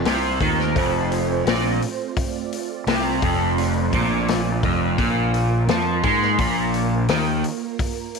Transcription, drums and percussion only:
0.05 snare loud
0.05 open hi-hat medium
0.41 kick medium
0.41 open hi-hat medium
0.60 snare soft
0.76 kick loud
0.76 open hi-hat medium
1.12 open hi-hat medium
1.47 snare loud
1.47 open hi-hat medium
1.82 open hi-hat medium
2.17 kick loud
2.17 open hi-hat medium
2.53 open hi-hat medium
2.87 snare loud
2.87 open hi-hat medium
3.22 kick loud
3.22 open hi-hat medium
3.58 open hi-hat medium
3.93 kick loud
3.93 open hi-hat medium
4.28 snare loud
4.28 open hi-hat medium
4.63 kick loud
4.63 open hi-hat medium
4.98 kick loud
4.98 open hi-hat medium
5.34 open hi-hat medium
5.68 snare loud
5.68 open hi-hat medium
6.04 kick loud
6.04 open hi-hat medium
6.22 snare soft
6.38 kick loud
6.38 open hi-hat medium
6.74 open hi-hat medium
7.09 snare loud
7.09 open hi-hat medium
7.44 open hi-hat medium
7.79 kick loud
7.79 open hi-hat medium
8.15 open hi-hat medium

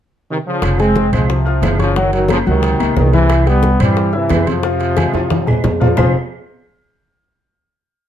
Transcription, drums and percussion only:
0.62 high bongo medium
0.62 high conga soft
0.62 high timbale medium
0.62 claves medium
0.79 high bongo soft
0.79 high conga soft
0.79 high timbale medium
0.96 high bongo medium
0.96 high conga medium
0.96 low timbale medium
1.13 high bongo soft
1.13 high conga soft
1.13 low conga medium
1.13 high timbale medium
1.13 claves medium
1.29 high bongo medium
1.29 high conga soft
1.47 high bongo soft
1.47 high conga soft
1.62 high bongo soft
1.62 low bongo medium
1.62 high conga medium
1.62 high timbale medium
1.62 low timbale medium
1.62 claves medium
1.79 high conga medium
1.79 high timbale medium
1.96 high bongo medium
1.96 high conga soft
2.13 high bongo soft
2.13 high conga soft
2.13 high timbale medium
2.28 high bongo medium
2.28 high conga medium
2.28 high timbale medium
2.28 low timbale medium
2.28 claves medium
2.46 high bongo soft
2.46 high conga soft
2.63 high bongo medium
2.63 high conga soft
2.63 high timbale medium
2.80 high bongo soft
2.80 high conga soft
2.80 high timbale medium
2.80 claves medium
2.97 high bongo soft
2.97 low bongo medium
2.97 high conga medium
2.97 low timbale medium
3.13 high conga medium
3.13 high timbale medium
3.30 high bongo medium
3.30 high timbale medium
3.30 claves medium
3.47 high bongo soft
3.47 high conga soft
3.47 high timbale medium
3.63 high bongo medium
3.63 high conga medium
3.63 low timbale medium
3.80 high bongo soft
3.80 high conga soft
3.80 low conga medium
3.80 high timbale loud
3.80 claves medium
3.97 high bongo medium
3.97 high conga soft
4.13 high bongo soft
4.13 high conga soft
4.29 high bongo soft
4.29 low bongo medium
4.29 high conga medium
4.29 high timbale medium
4.29 low timbale medium
4.29 claves medium
4.47 high conga medium
4.47 high timbale medium
4.63 high bongo medium
4.63 high conga soft
4.80 high bongo soft
4.80 high conga soft
4.80 high timbale medium
4.97 high bongo medium
4.97 high conga medium
4.97 high timbale medium
4.97 low timbale medium
4.97 claves medium
5.14 high bongo soft
5.14 high timbale medium
5.30 high bongo medium
5.30 high conga loud
5.30 high timbale medium
5.47 high bongo soft
5.47 low conga medium
5.47 low timbale medium
5.47 claves medium
5.64 high bongo soft
5.64 low bongo medium
5.64 low conga medium
5.64 low timbale medium
5.81 low conga medium
5.81 low timbale medium
5.97 low bongo medium
5.97 low conga medium
5.97 low timbale medium
5.97 claves medium

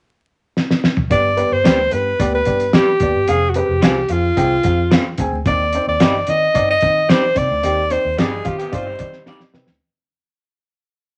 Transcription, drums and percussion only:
0.57 snare medium
0.71 snare medium
0.84 snare medium
0.97 mid tom medium
1.11 kick loud
1.11 closed hi-hat medium
1.37 closed hi-hat medium
1.65 snare loud
1.65 closed hi-hat loud
1.91 closed hi-hat medium
2.20 kick medium
2.20 closed hi-hat medium
2.45 kick medium
2.45 closed hi-hat medium
2.60 closed hi-hat medium
2.73 snare loud
2.73 closed hi-hat medium
3.00 kick medium
3.00 closed hi-hat medium
3.28 closed hi-hat medium
3.54 closed hi-hat medium
3.82 snare loud
3.82 closed hi-hat loud
4.09 closed hi-hat medium
4.37 kick medium
4.37 closed hi-hat medium
4.63 kick medium
4.63 closed hi-hat medium
4.91 snare loud
4.91 closed hi-hat medium
5.18 kick medium
5.18 closed hi-hat medium
5.46 kick loud
5.46 closed hi-hat medium
5.73 closed hi-hat medium
6.00 snare loud
6.00 closed hi-hat loud
6.27 closed hi-hat medium
6.55 kick medium
6.55 closed hi-hat medium
6.81 kick medium
6.81 closed hi-hat medium
7.09 snare loud
7.09 closed hi-hat medium
7.36 kick medium
7.36 closed hi-hat medium
7.63 closed hi-hat medium
7.90 closed hi-hat medium
8.18 snare loud
8.18 closed hi-hat medium
8.45 kick medium
8.45 closed hi-hat medium
8.60 closed hi-hat soft
8.73 kick medium
8.73 closed hi-hat medium
8.99 kick medium
8.99 closed hi-hat medium
9.13 snare soft
9.26 snare soft
9.40 snare medium
9.54 snare medium
9.67 snare medium

